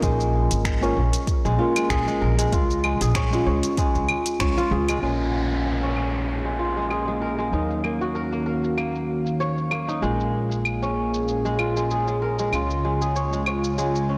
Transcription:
Already playing: G#3 A#3 C#4 D#4 F4 A#4 C#5
0.02 A#1 G#3, kick, closed hi-hat, shaker
0.20 shaker
0.51 G#1, closed hi-hat, shaker
0.65 finger snap, kick, closed hi-hat, shaker
0.81 G#3 A#3 C#4 F4 A#4, shaker
0.97 A#1
1.13 closed hi-hat, shaker
1.27 kick, closed hi-hat, shaker
1.45 A#1 G#3, shaker
1.57 G#3 A#3 C#4 F4
1.61 A#4
1.76 G#3, closed hi-hat, claves, shaker
1.90 A#1 G#4, finger snap, kick, closed hi-hat, shaker
2.07 G#3, shaker
2.21 A#1 A#4
2.39 G#3, closed hi-hat, shaker
2.52 C#2 F4, kick, closed hi-hat, shaker
2.70 shaker
2.84 G#3, claves
3.01 A#1 G#4, closed hi-hat, shaker
3.15 C#5, finger snap, kick, closed hi-hat, shaker
3.30 G#3 C#4, shaker
3.34 F4
3.46 C#2 C#5
3.63 closed hi-hat, shaker
3.77 G#3, kick, closed hi-hat, shaker
3.95 C#2, shaker
4.09 claves
4.26 closed hi-hat, shaker
4.39 C#2 G#3 C#4 F4 C#5, finger snap, kick, closed hi-hat, shaker
4.58 F4, shaker
4.70 C#2 G#3 C#4 F4 G#4
4.89 G#3, closed hi-hat, claves, shaker
5.01 A#1 A#2 G#3 A#3 C#4 F4 C#5, downlifter, claves, shaker
5.05 A#4
5.16 A#3
5.20 shaker
5.52 G#4 C#5, shaker
5.83 C#4
5.96 claves
6.14 F5, shaker
6.28 shaker
6.45 G#3, shaker
6.59 F4
6.77 G#3, shaker
6.90 G#4, claves, shaker
7.08 G#3, shaker
7.22 A#4
7.39 G#3, shaker
7.51 D#2 D#3 F#3 A#3 C#4 D#4, shaker
7.55 A#4
7.70 shaker
7.76 F#4
7.84 A#3, claves
8.01 F#4, shaker
8.15 A#4, shaker
8.32 A#3, shaker
8.46 A#4
8.64 shaker
8.77 A#3, claves, shaker
8.95 shaker
9.26 shaker
9.40 C#5, shaker
9.58 shaker
9.71 A#3, claves
9.88 D#4, shaker
10.01 A#1 A#2 G#3 A#3 C#4 F4, shaker
10.05 A#4
10.20 shaker
10.51 shaker
10.61 G#4
10.65 claves, shaker
10.82 C#4, shaker
11.14 shaker
11.28 shaker
11.45 G#3, shaker
11.59 F4, claves
11.77 G#3, shaker
11.91 G#4, shaker
12.08 G#3, shaker
12.22 A#4
12.39 G#3, shaker
12.51 C#2 C#3 G#3 C#4 F4, claves, shaker
12.55 F4
12.68 G#3, shaker
12.85 G#3
12.93 G#5
13.01 F4 G#4, shaker
13.16 C#5, shaker
13.33 G#3, shaker
13.46 C#5, claves
13.64 shaker
13.78 G#3, shaker
13.95 shaker
14.09 C#4

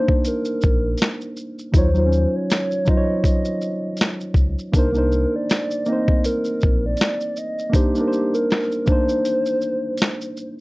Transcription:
Already playing: A#3 D4 D#4 C5
0.08 kick
0.25 A#4, closed hi-hat, shaker
0.45 shaker
0.61 A#1, kick, shaker
0.97 closed hi-hat, shaker
1.02 finger snap, snare
1.21 shaker
1.37 shaker
1.59 shaker
1.72 D#2 F#3 D#4 C5, kick, closed hi-hat, shaker
1.76 F4 C#5
1.94 F#3 D#4 F4, shaker
1.99 C5
2.06 C#4
2.12 shaker
2.36 C#5
2.50 finger snap, snare, closed hi-hat, shaker
2.71 shaker
2.85 F#3 D#4 F4, kick, shaker
2.89 C5 D#5
2.97 C#5
3.24 D#5, kick, closed hi-hat, shaker
3.45 shaker
3.61 shaker
3.97 closed hi-hat, shaker
4.01 finger snap, snare
4.21 shaker
4.34 C#2, kick, shaker
4.59 shaker
4.72 C2 A#3 D4 D#4 A#4, kick, closed hi-hat, shaker
4.79 C5
4.93 A#3 D4 D#4, shaker
4.98 C5
5.12 shaker
5.36 D5
5.50 finger snap, snare, closed hi-hat, shaker
5.71 shaker
5.86 A#3 C4 D#5, shaker
5.90 D#4 C5
6.08 kick
6.24 A#4, closed hi-hat, shaker
6.44 shaker
6.61 A#1, kick, shaker
6.86 D5
6.97 closed hi-hat, shaker
7.01 finger snap, snare
7.20 shaker
7.36 D#5, shaker
7.59 shaker
7.70 A#3 D4, kick
7.74 D#4 G4 C5, closed hi-hat, shaker
7.95 A#3 D4, shaker
7.99 D#4 A#4
8.08 C5
8.13 shaker
8.34 A#4, shaker
8.51 finger snap, snare, closed hi-hat, shaker
8.72 shaker
8.86 A#3 D4 C5, kick, shaker
8.90 D#4 C5
9.09 shaker
9.25 closed hi-hat, shaker
9.46 shaker
9.61 shaker
9.97 closed hi-hat, shaker
10.02 finger snap, snare
10.21 shaker
10.37 shaker

